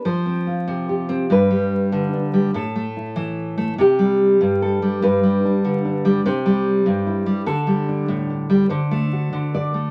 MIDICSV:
0, 0, Header, 1, 2, 480
1, 0, Start_track
1, 0, Key_signature, 1, "major"
1, 0, Tempo, 831025
1, 27, Time_signature, 6, 3, 24, 8
1, 2426, Tempo, 820793
1, 5763, End_track
2, 0, Start_track
2, 0, Title_t, "Nylon-string guitar"
2, 0, Program_c, 0, 24
2, 29, Note_on_c, 0, 53, 57
2, 31, Note_on_c, 0, 72, 83
2, 148, Note_on_c, 0, 60, 46
2, 271, Note_on_c, 0, 65, 41
2, 390, Note_on_c, 0, 48, 54
2, 512, Note_off_c, 0, 72, 0
2, 515, Note_on_c, 0, 67, 43
2, 622, Note_off_c, 0, 60, 0
2, 629, Note_on_c, 0, 60, 57
2, 721, Note_off_c, 0, 60, 0
2, 724, Note_off_c, 0, 65, 0
2, 751, Note_off_c, 0, 48, 0
2, 751, Note_on_c, 0, 43, 65
2, 753, Note_off_c, 0, 53, 0
2, 753, Note_off_c, 0, 67, 0
2, 763, Note_on_c, 0, 71, 82
2, 870, Note_on_c, 0, 55, 51
2, 1110, Note_on_c, 0, 50, 56
2, 1232, Note_on_c, 0, 62, 38
2, 1341, Note_off_c, 0, 55, 0
2, 1348, Note_on_c, 0, 55, 52
2, 1441, Note_off_c, 0, 55, 0
2, 1442, Note_off_c, 0, 50, 0
2, 1466, Note_off_c, 0, 43, 0
2, 1468, Note_on_c, 0, 45, 67
2, 1471, Note_off_c, 0, 62, 0
2, 1473, Note_off_c, 0, 71, 0
2, 1476, Note_on_c, 0, 69, 84
2, 1591, Note_on_c, 0, 57, 52
2, 1713, Note_on_c, 0, 64, 43
2, 1825, Note_on_c, 0, 52, 59
2, 2058, Note_off_c, 0, 57, 0
2, 2065, Note_on_c, 0, 57, 62
2, 2157, Note_off_c, 0, 52, 0
2, 2158, Note_off_c, 0, 45, 0
2, 2158, Note_off_c, 0, 57, 0
2, 2161, Note_off_c, 0, 64, 0
2, 2185, Note_on_c, 0, 48, 66
2, 2191, Note_off_c, 0, 69, 0
2, 2199, Note_on_c, 0, 67, 75
2, 2303, Note_on_c, 0, 55, 61
2, 2544, Note_off_c, 0, 48, 0
2, 2547, Note_on_c, 0, 43, 58
2, 2671, Note_off_c, 0, 67, 0
2, 2673, Note_on_c, 0, 69, 80
2, 2787, Note_off_c, 0, 55, 0
2, 2790, Note_on_c, 0, 55, 53
2, 2901, Note_off_c, 0, 43, 0
2, 2907, Note_off_c, 0, 69, 0
2, 2908, Note_on_c, 0, 43, 70
2, 2914, Note_on_c, 0, 71, 92
2, 3028, Note_off_c, 0, 55, 0
2, 3030, Note_on_c, 0, 55, 57
2, 3157, Note_on_c, 0, 62, 46
2, 3271, Note_on_c, 0, 50, 56
2, 3382, Note_off_c, 0, 62, 0
2, 3389, Note_on_c, 0, 62, 51
2, 3500, Note_off_c, 0, 55, 0
2, 3507, Note_on_c, 0, 55, 65
2, 3594, Note_off_c, 0, 55, 0
2, 3596, Note_off_c, 0, 50, 0
2, 3621, Note_off_c, 0, 43, 0
2, 3624, Note_off_c, 0, 62, 0
2, 3624, Note_off_c, 0, 71, 0
2, 3628, Note_on_c, 0, 48, 74
2, 3631, Note_on_c, 0, 72, 86
2, 3746, Note_on_c, 0, 55, 58
2, 3981, Note_on_c, 0, 43, 61
2, 3983, Note_off_c, 0, 48, 0
2, 4103, Note_on_c, 0, 64, 50
2, 4210, Note_off_c, 0, 55, 0
2, 4217, Note_on_c, 0, 55, 53
2, 4306, Note_off_c, 0, 55, 0
2, 4309, Note_off_c, 0, 64, 0
2, 4335, Note_off_c, 0, 72, 0
2, 4335, Note_on_c, 0, 50, 64
2, 4336, Note_off_c, 0, 43, 0
2, 4337, Note_on_c, 0, 69, 86
2, 4454, Note_on_c, 0, 55, 51
2, 4582, Note_on_c, 0, 62, 48
2, 4696, Note_on_c, 0, 45, 60
2, 4816, Note_off_c, 0, 62, 0
2, 4823, Note_on_c, 0, 62, 44
2, 4931, Note_off_c, 0, 55, 0
2, 4938, Note_on_c, 0, 55, 55
2, 5027, Note_off_c, 0, 50, 0
2, 5028, Note_off_c, 0, 45, 0
2, 5028, Note_off_c, 0, 55, 0
2, 5031, Note_off_c, 0, 62, 0
2, 5051, Note_off_c, 0, 69, 0
2, 5054, Note_on_c, 0, 72, 77
2, 5059, Note_on_c, 0, 50, 68
2, 5182, Note_on_c, 0, 57, 52
2, 5308, Note_on_c, 0, 66, 38
2, 5417, Note_off_c, 0, 50, 0
2, 5424, Note_on_c, 0, 50, 53
2, 5542, Note_off_c, 0, 72, 0
2, 5551, Note_on_c, 0, 74, 79
2, 5659, Note_off_c, 0, 57, 0
2, 5666, Note_on_c, 0, 57, 46
2, 5758, Note_off_c, 0, 57, 0
2, 5759, Note_off_c, 0, 50, 0
2, 5762, Note_off_c, 0, 66, 0
2, 5763, Note_off_c, 0, 74, 0
2, 5763, End_track
0, 0, End_of_file